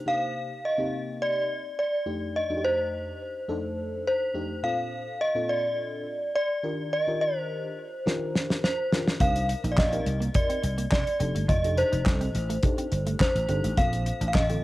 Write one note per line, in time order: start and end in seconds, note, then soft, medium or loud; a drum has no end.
0.06 0.51 C3 medium
0.06 0.51 A#3 medium
0.06 0.51 D4 medium
0.06 0.51 D#4 medium
0.06 0.51 G4 medium
0.06 0.66 F5 loud
0.65 1.23 D#5 medium
0.78 1.48 C3 medium
0.78 1.48 A#3 medium
0.78 1.48 C4 medium
0.78 1.48 D#4 medium
0.78 1.48 G4 medium
1.22 1.74 D5 loud
1.79 2.37 D5 medium
2.06 2.41 F2 medium
2.06 2.41 A3 medium
2.06 2.41 D4 medium
2.06 2.41 D#4 medium
2.06 2.41 G4 medium
2.36 2.65 D#5 medium
2.50 3.11 F2 medium
2.50 3.11 A3 medium
2.50 3.11 D4 medium
2.50 3.11 D#4 medium
2.50 2.56 F#4 medium
2.57 3.15 G4 medium
2.65 4.06 C5 medium
3.48 4.02 F2 loud
3.48 4.02 A3 medium
3.48 4.02 D4 loud
3.48 4.02 D#4 medium
3.48 4.02 A4 loud
4.07 4.66 C5 loud
4.34 4.53 F2 medium
4.34 4.53 A3 medium
4.34 4.53 D4 medium
4.34 4.53 D#4 medium
4.34 4.53 G4 loud
4.63 5.08 A#2 medium
4.63 5.08 C4 medium
4.63 5.08 D4 medium
4.63 5.08 F4 medium
4.63 5.08 A4 medium
4.63 5.22 F5 loud
5.21 5.50 D#5 loud
5.35 6.05 A#2 medium
5.35 6.05 C4 medium
5.35 6.05 D4 medium
5.35 6.05 F4 medium
5.35 6.05 A4 medium
5.49 6.31 D5 medium
6.35 6.94 D5 loud
6.63 6.98 D#3 medium
6.63 6.98 D4 medium
6.63 6.98 F4 medium
6.63 6.98 G4 medium
6.63 6.98 A#4 medium
6.93 7.22 D#5 medium
7.07 7.69 D#3 medium
7.07 7.69 D4 medium
7.07 7.69 F4 medium
7.07 7.69 G4 medium
7.07 7.69 A#4 medium
7.21 8.63 C5 medium
8.06 8.59 D#3 loud
8.06 8.59 D4 medium
8.06 8.59 F4 medium
8.06 8.59 G4 medium
8.06 8.60 A#4 loud
8.06 snare medium
8.36 snare medium
8.50 snare medium
8.64 9.23 C5 medium
8.64 snare medium
8.92 9.10 D#3 medium
8.92 9.10 D4 medium
8.92 9.11 F4 medium
8.92 9.11 G4 medium
8.92 9.11 A#4 loud
8.92 snare medium
9.08 snare medium
9.20 9.53 C2 medium
9.20 9.29 C4 medium
9.20 9.65 D4 medium
9.20 9.65 D#4 medium
9.20 9.66 G4 medium
9.20 9.66 A#4 medium
9.20 9.68 F5 loud
9.20 kick loud
9.20 closed hi-hat loud
9.36 closed hi-hat medium
9.49 muted clean electric guitar stroke soft
9.49 closed hi-hat medium
9.64 9.74 A#1 medium
9.64 9.72 D#4 medium
9.64 closed hi-hat medium
9.72 9.78 D5 medium
9.78 9.99 A#1 medium
9.78 10.37 D#5 medium
9.78 kick loud
9.78 snare loud
9.78 clap medium
9.92 10.00 C4 medium
9.92 10.62 C4 medium
9.92 10.62 D#4 medium
9.92 10.62 G4 medium
9.92 10.63 A#4 medium
9.92 closed hi-hat soft
10.06 10.28 C2 loud
10.06 muted clean electric guitar stroke soft
10.06 closed hi-hat medium
10.20 10.29 A#3 medium
10.20 closed hi-hat medium
10.34 10.91 D5 loud
10.34 kick loud
10.34 closed hi-hat medium
10.49 10.58 C4 medium
10.49 closed hi-hat medium
10.63 10.85 C2 medium
10.63 muted clean electric guitar stroke soft
10.63 closed hi-hat medium
10.78 10.86 A#3 medium
10.78 closed hi-hat medium
10.92 11.03 C3 medium
10.92 11.45 D5 loud
10.92 kick loud
10.92 snare loud
10.92 clap medium
11.07 closed hi-hat soft
11.20 11.32 F1 loud
11.20 11.29 C4 medium
11.20 11.55 D4 medium
11.20 11.55 D#4 medium
11.20 11.55 G4 medium
11.20 11.55 A4 medium
11.20 closed hi-hat medium
11.35 11.46 G1 loud
11.35 11.43 A3 medium
11.35 closed hi-hat medium
11.48 11.82 F1 loud
11.48 11.58 F4 medium
11.48 11.78 D#5 loud
11.48 kick loud
11.48 closed hi-hat loud
11.64 12.26 D4 medium
11.64 12.26 D#4 medium
11.64 12.26 G4 medium
11.64 12.26 A4 medium
11.64 closed hi-hat medium
11.77 13.20 C5 medium
11.77 muted clean electric guitar stroke medium
11.77 closed hi-hat medium
11.92 12.03 F1 medium
11.92 12.00 D#4 medium
11.92 closed hi-hat medium
12.06 12.28 C2 loud
12.06 kick loud
12.06 snare loud
12.06 clap loud
12.21 12.29 C4 medium
12.21 closed hi-hat soft
12.35 12.56 A1 medium
12.35 muted clean electric guitar stroke soft
12.35 closed hi-hat medium
12.50 12.58 A3 medium
12.50 closed hi-hat medium
12.63 13.16 D4 loud
12.63 13.16 D#4 medium
12.63 13.17 G4 medium
12.63 13.17 A4 loud
12.63 kick loud
12.63 closed hi-hat medium
12.78 12.86 C4 medium
12.78 closed hi-hat medium
12.92 13.13 G1 loud
12.92 muted clean electric guitar stroke medium
12.92 closed hi-hat medium
13.07 13.15 A3 medium
13.07 closed hi-hat medium
13.20 13.80 C5 loud
13.20 muted clean electric guitar stroke medium
13.20 kick loud
13.20 snare loud
13.20 clap loud
13.35 13.45 A1 loud
13.35 closed hi-hat medium
13.49 13.60 G1 loud
13.49 13.58 C4 medium
13.49 13.67 D4 medium
13.49 13.67 D#4 medium
13.49 13.67 G4 medium
13.49 13.67 A4 medium
13.49 closed hi-hat medium
13.64 13.74 A1 medium
13.64 13.72 A3 medium
13.64 closed hi-hat medium
13.77 14.10 A#1 loud
13.77 13.86 A#3 medium
13.77 14.22 C4 medium
13.77 14.22 D4 medium
13.77 14.23 F4 medium
13.77 14.23 A4 medium
13.77 14.27 F5 loud
13.77 kick loud
13.77 closed hi-hat loud
13.93 closed hi-hat medium
14.06 muted clean electric guitar stroke soft
14.06 closed hi-hat medium
14.21 14.31 A1 loud
14.21 14.29 D4 medium
14.21 closed hi-hat medium
14.28 14.35 F5 medium
14.34 14.56 A1 medium
14.34 14.64 D#5 medium
14.34 kick loud
14.34 snare loud
14.34 clap medium
14.50 14.64 D3 medium
14.50 14.58 C4 medium
14.50 14.64 C4 medium
14.50 14.64 F4 medium
14.50 14.64 A4 medium
14.50 closed hi-hat medium